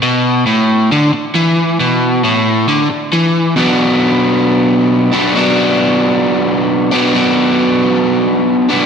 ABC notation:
X:1
M:4/4
L:1/8
Q:1/4=135
K:Bm
V:1 name="Overdriven electric guitar" clef=bass
B,,2 A,,2 D, z E,2 | B,,2 A,,2 D, z E,2 | [B,,F,B,D]6- [B,,F,B,D] [B,,F,B,D] | [B,,F,B,D]6- [B,,F,B,D] [B,,F,B,D] |
[B,,F,B,D]6- [B,,F,B,D] [B,,F,B,D] |]